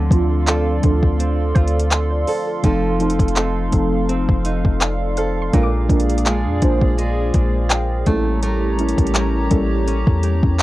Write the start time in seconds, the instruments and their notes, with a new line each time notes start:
Already playing: nylon-string guitar D3 A4, synth keys F3 A3 C4 D4 A4, analog synth pad A4 D5 F5 C6
0.10 808-style bass D2, synth keys F3 A3 C4 D4 F4, kick, closed hi-hat
0.47 nylon-string guitar C4 F4 A4, clap, closed hi-hat
0.82 808-style bass D2, synth keys F3 A3 C4 D4 A4, kick, closed hi-hat
1.03 kick
1.20 nylon-string guitar C4, closed hi-hat
1.55 808-style bass D2, nylon-string guitar F4, synth pluck C5, kick, closed hi-hat
1.68 closed hi-hat
1.80 closed hi-hat
1.91 synth keys A4, clap, closed hi-hat
2.11 synth keys D5
2.27 nylon-string guitar A4, synth keys C5, open hi-hat
2.47 synth keys A4
2.62 808-style bass F1, synth keys F3 A3 C4 D#4 A4, nylon-string guitar F3 A4, analog synth pad D#4, kick, closed hi-hat
2.99 synth keys F3 A3 C4 D#4 A4, closed hi-hat
3.10 closed hi-hat
3.19 808-style bass F1, kick, closed hi-hat
3.28 closed hi-hat
3.36 nylon-string guitar C4 D#4 A4, clap, closed hi-hat
3.71 808-style bass F1, synth keys F3 A3 C4 D#4 A4, kick, closed hi-hat
4.09 nylon-string guitar C4, closed hi-hat
4.29 808-style bass F1, kick
4.45 nylon-string guitar D#4, closed hi-hat
4.65 808-style bass F1, kick
4.81 synth keys D5, clap, closed hi-hat
5.17 nylon-string guitar A4, synth keys C5, synth pluck F5, closed hi-hat
5.37 synth keys A4
5.42 synth pluck C6
5.52 808-style bass A#1, nylon-string guitar A#2 F4, synth keys G#3 A#3 D4 F4 A#4, analog synth pad G#4 D5, kick, closed hi-hat
5.63 synth pluck D6
5.88 808-style bass A#1, synth keys G#3 A#3 D4 F4 A#4, kick, closed hi-hat
6.00 closed hi-hat
6.09 closed hi-hat
6.18 closed hi-hat
6.26 nylon-string guitar G#3 D4 F4, clap, closed hi-hat
6.45 808-style bass F2
6.61 808-style bass A#1, synth keys G#3 A#3 D4 F4 C5, kick, closed hi-hat
6.81 kick
6.98 nylon-string guitar G#3, closed hi-hat
7.34 808-style bass A#1, nylon-string guitar D4, kick, closed hi-hat
7.69 synth pluck G5, clap, closed hi-hat
8.06 808-style bass A1, synth keys G3 A#3 C#4 E4 A4, nylon-string guitar A3, analog synth pad G4 C#5 A#5, kick, closed hi-hat
8.43 nylon-string guitar A3 A#4, closed hi-hat
8.78 synth keys G3 A#3 C#4 E4 A#4, closed hi-hat
8.89 closed hi-hat
8.98 808-style bass A1, kick, closed hi-hat
9.07 closed hi-hat
9.15 nylon-string guitar C#4 G4 A#4, clap, closed hi-hat
9.50 808-style bass A1, synth keys G3 A#3 C#4 E4 A4, kick, closed hi-hat
9.87 nylon-string guitar C#4, closed hi-hat
10.07 808-style bass E2, kick
10.23 nylon-string guitar G4, closed hi-hat
10.43 808-style bass E2, kick
10.59 clap, closed hi-hat